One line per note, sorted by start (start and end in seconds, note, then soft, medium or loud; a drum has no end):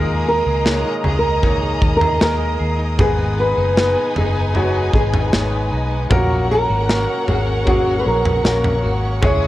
0.00 0.42 D#2 loud
0.00 1.01 A#2 medium
0.00 1.42 D#3 medium
0.00 0.61 G#3 loud
0.00 0.61 A#3 medium
0.00 0.62 D#4 medium
0.00 0.07 G#4 medium
0.00 0.28 G#4 loud
0.00 0.62 G#4 medium
0.00 0.62 A#4 loud
0.00 2.96 A#4 medium
0.00 2.95 D#5 medium
0.00 6.07 D#5 medium
0.00 6.07 G#5 medium
0.00 2.95 A#5 loud
0.00 6.07 D#6 medium
0.07 0.45 G#4 medium
0.26 0.84 D#4 medium
0.26 1.01 A#4 loud
0.45 0.82 C#2 loud
0.45 1.03 G#4 medium
0.65 1.39 G#3 medium
0.65 1.39 A#3 medium
0.65 1.40 D#4 medium
0.65 1.40 G#4 medium
0.65 2.19 A#4 medium
0.65 1.40 C#5 medium
0.65 snare medium
0.84 1.23 D#4 medium
1.04 1.78 C#2 medium
1.04 1.62 G#4 medium
1.04 floor tom medium
1.19 1.96 A#4 loud
1.23 1.81 D#4 medium
1.42 4.92 D#3 medium
1.42 2.17 G#3 medium
1.42 2.17 A#3 medium
1.42 2.18 D#4 medium
1.42 2.18 G#4 medium
1.42 2.18 C#5 medium
1.42 kick medium
1.42 floor tom medium
1.62 2.00 G#4 medium
1.82 2.18 D#2 medium
1.82 2.39 D#4 medium
1.82 kick loud
1.97 2.59 G#4 medium
1.97 2.21 A#4 loud
2.01 floor tom medium
2.20 2.58 D#2 medium
2.20 2.95 G#3 medium
2.20 2.95 A#3 medium
2.20 2.96 D#4 medium
2.20 2.96 G#4 medium
2.20 3.06 A#4 medium
2.20 2.76 A#4 medium
2.20 2.96 A#4 medium
2.20 snare loud
2.40 2.79 D#4 medium
2.59 3.01 D#2 medium
2.59 3.18 G#4 medium
2.79 3.18 D#4 medium
2.98 3.53 G#1 medium
2.98 4.53 G#2 medium
2.98 4.12 G#2 medium
2.98 4.12 D#3 medium
2.98 3.73 G#3 medium
2.98 3.73 B3 medium
2.98 6.06 D#4 medium
2.98 3.73 D#4 medium
2.98 3.73 G#4 medium
2.98 3.39 G#4 loud
2.98 6.06 B4 medium
2.98 6.08 B4 medium
2.98 3.74 B4 loud
2.98 6.06 G#5 medium
2.98 kick loud
2.98 floor tom loud
3.18 3.56 D#4 medium
3.37 3.95 B3 medium
3.37 4.17 B4 loud
3.57 3.94 F#1 loud
3.57 4.15 D#4 medium
3.77 4.51 G#3 medium
3.77 4.51 B3 medium
3.77 4.51 D#4 medium
3.77 5.31 G#4 medium
3.77 4.52 G#4 medium
3.77 4.52 B4 medium
3.77 snare loud
3.96 4.34 B3 medium
4.16 4.90 F#1 medium
4.16 4.73 D#4 medium
4.16 4.56 G#4 medium
4.16 floor tom medium
4.35 4.93 B3 medium
4.54 6.18 G#2 medium
4.54 5.28 G#3 medium
4.54 5.29 B3 medium
4.54 5.29 D#4 medium
4.54 4.95 F#4 medium
4.54 5.29 G#4 medium
4.54 5.30 C#5 medium
4.54 floor tom medium
4.74 5.12 D#4 medium
4.94 5.30 G#1 medium
4.94 5.51 B3 medium
4.94 5.68 G#4 medium
4.94 kick loud
5.13 5.71 D#4 medium
5.13 floor tom medium
5.31 5.69 G#1 medium
5.31 6.06 G#3 medium
5.31 6.06 B3 medium
5.31 6.07 D#4 medium
5.31 6.18 G#4 medium
5.31 6.07 G#4 medium
5.31 6.07 C#5 medium
5.31 snare loud
5.52 5.90 B3 medium
5.72 6.08 B1 medium
5.72 6.19 D#4 medium
5.91 6.19 B3 medium
6.10 6.65 A#1 medium
6.10 7.24 A#2 medium
6.10 6.84 F#3 medium
6.10 6.84 A#3 medium
6.10 7.65 A#3 loud
6.10 9.18 C#4 medium
6.10 6.85 C#4 medium
6.10 6.85 F#4 medium
6.10 6.51 F#4 loud
6.10 9.18 A#4 medium
6.10 9.20 A#4 medium
6.10 6.85 A#4 loud
6.10 9.20 C#5 medium
6.10 9.18 F#5 loud
6.10 9.19 F#5 medium
6.10 9.47 C#6 medium
6.10 kick loud
6.10 floor tom loud
6.30 6.68 F#4 medium
6.50 7.07 C#4 medium
6.50 7.24 A#4 loud
6.69 7.06 G#1 medium
6.69 7.26 F#4 medium
6.88 7.62 F#3 medium
6.88 7.62 A#3 medium
6.88 7.63 C#4 medium
6.88 7.63 F#4 medium
6.88 8.43 A#4 medium
6.88 7.63 A#4 medium
6.88 snare loud
7.08 7.46 C#4 medium
7.27 8.02 G#1 medium
7.27 7.85 F#4 medium
7.27 7.67 G#4 medium
7.27 floor tom medium
7.47 8.05 C#4 medium
7.66 8.40 F#3 medium
7.66 9.30 A#3 medium
7.66 8.40 A#3 medium
7.66 8.41 C#4 medium
7.66 8.41 F#4 medium
7.66 7.99 F#4 medium
7.66 8.41 G#4 medium
7.66 kick medium
7.66 floor tom medium
7.86 8.23 F#4 medium
7.99 8.06 B4 medium
8.05 8.42 A#1 loud
8.05 8.63 C#4 medium
8.05 8.80 A#4 medium
8.25 8.82 F#4 medium
8.25 floor tom medium
8.43 8.81 A#1 loud
8.43 9.18 F#3 medium
8.43 9.18 A#3 medium
8.43 9.19 C#4 medium
8.43 9.19 F#4 medium
8.43 9.30 A#4 medium
8.43 9.19 A#4 medium
8.43 snare loud
8.64 9.03 C#4 medium
8.64 floor tom medium
8.83 9.20 G#1 loud
8.83 9.30 F#4 medium
9.03 9.45 C#4 medium
9.21 9.47 C#2 loud
9.21 9.47 C#3 loud
9.21 9.47 C#3 medium
9.21 9.47 G#3 loud
9.21 9.47 C#4 medium
9.21 9.47 E4 medium
9.21 9.47 G#4 medium
9.21 9.47 G#4 loud
9.21 9.47 C#5 medium
9.21 9.47 C#5 loud
9.21 9.47 G#5 loud
9.21 9.47 D#6 medium
9.21 kick loud
9.21 floor tom loud
9.42 9.47 D#4 medium